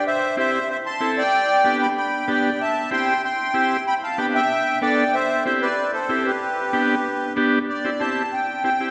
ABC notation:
X:1
M:4/4
L:1/8
Q:1/4=189
K:C
V:1 name="Accordion"
[ce]2 [ce]2 [ce] [ac']2 [dg]- | [dg]3 [gb] [gb]2 [dg]2 | [ea]2 [gc']2 [gc']4 | [gb] [fa] [gb] [eg]3 [dg]2 |
[ce]2 [ce] [Bd]2 [Ac]2 [GB]- | [GB]6 z2 | d2 a2 g2 g2 |]
V:2 name="Transistor combo organ"
z2 [CEG] z3 [CEA] z | z2 [B,DG] z3 [B,DG] z | z2 [CEG] z3 [CEG] z | z2 [B,DG] z3 [B,DA] z |
z2 [CEG] z3 [CEG] z | z2 [B,DG] z3 [B,DG] z | z [CEG] [CEG] z3 [CEG] [CEG] |]